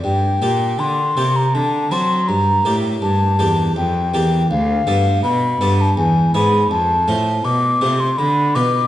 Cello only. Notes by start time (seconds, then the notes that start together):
0.05 G2
0.42 A#2
0.80 D3
1.18 C3
1.55 D3
1.92 F#3
2.29 G2
2.66 A2
3.03 G2
3.40 E2
3.76 F2
4.14 E2
4.51 D2
4.88 G2
5.24 B2
5.61 G2
5.97 E2
6.33 G#2
6.71 F2
7.07 A2
7.44 B2
7.82 C3
8.19 D3
8.55 B2